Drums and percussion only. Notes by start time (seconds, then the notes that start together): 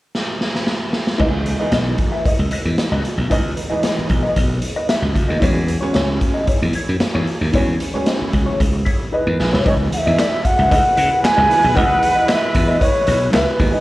0.15 snare
0.41 snare
0.55 snare
0.67 snare
0.93 snare
1.07 snare
1.20 kick, crash
1.46 closed hi-hat
1.72 snare, closed hi-hat
1.98 kick, closed hi-hat
2.25 kick, closed hi-hat
2.51 closed hi-hat
2.78 snare, closed hi-hat
3.05 closed hi-hat
3.31 kick, closed hi-hat
3.57 closed hi-hat
3.83 snare, closed hi-hat
4.10 kick, closed hi-hat
4.36 kick, closed hi-hat
4.62 closed hi-hat
4.89 snare, closed hi-hat
5.16 kick, closed hi-hat
5.42 kick, closed hi-hat
5.68 closed hi-hat
5.94 snare, closed hi-hat
6.21 kick, closed hi-hat
6.47 kick, closed hi-hat
6.73 closed hi-hat
7.00 snare, closed hi-hat
7.27 open hi-hat
7.53 kick, closed hi-hat
7.80 closed hi-hat
8.06 snare, closed hi-hat
8.33 kick, closed hi-hat
8.60 kick, closed hi-hat
8.86 kick, closed hi-hat
9.40 snare
9.54 snare
9.66 kick, closed hi-hat
9.92 closed hi-hat
10.18 snare, clap, closed hi-hat
10.45 kick, closed hi-hat
10.71 kick, closed hi-hat
10.97 closed hi-hat
11.25 snare, clap, closed hi-hat
11.51 open hi-hat
11.77 kick, closed hi-hat
12.03 closed hi-hat
12.28 snare, clap, closed hi-hat
12.55 kick, closed hi-hat
12.81 kick, closed hi-hat
13.07 closed hi-hat
13.34 snare, clap, closed hi-hat
13.60 kick, open hi-hat